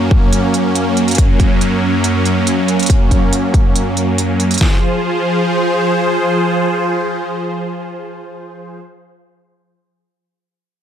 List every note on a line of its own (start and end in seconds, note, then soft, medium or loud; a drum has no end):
0.00 4.57 F#2 medium
0.00 4.57 F#3 medium
0.00 4.57 A#3 medium
0.00 4.57 C#4 medium
0.11 kick medium
0.33 closed hi-hat medium
0.54 closed hi-hat soft
0.75 closed hi-hat medium
0.97 closed hi-hat soft
1.08 closed hi-hat soft
1.11 closed hi-hat medium
1.15 kick loud
1.15 closed hi-hat medium
1.18 closed hi-hat medium
1.40 kick medium
1.40 closed hi-hat soft
1.61 closed hi-hat medium
2.04 closed hi-hat medium
2.25 closed hi-hat soft
2.47 closed hi-hat medium
2.68 closed hi-hat soft
2.79 closed hi-hat soft
2.83 closed hi-hat medium
2.86 kick loud
2.86 closed hi-hat medium
2.90 closed hi-hat medium
3.11 kick medium
3.11 closed hi-hat soft
3.33 closed hi-hat medium
3.54 kick medium
3.54 closed hi-hat soft
3.76 closed hi-hat medium
3.97 closed hi-hat soft
4.18 closed hi-hat medium
4.40 closed hi-hat soft
4.51 closed hi-hat soft
4.54 closed hi-hat medium
4.58 8.80 F3 medium
4.58 8.80 F4 medium
4.58 8.80 G#4 medium
4.58 8.80 C5 medium
4.58 kick loud
4.58 snare medium
4.58 closed hi-hat medium
4.58 open hi-hat medium